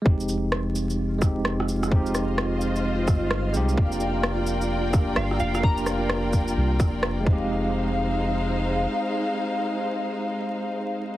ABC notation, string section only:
X:1
M:4/4
L:1/8
Q:"Swing 16ths" 1/4=129
K:Fdor
V:1 name="String section"
z8 | [Fce]8 | [FBdg]8- | [FBdg]6- [FBdg] [A,Ecf]- |
[A,Ecf]8- | [A,Ecf]8 |]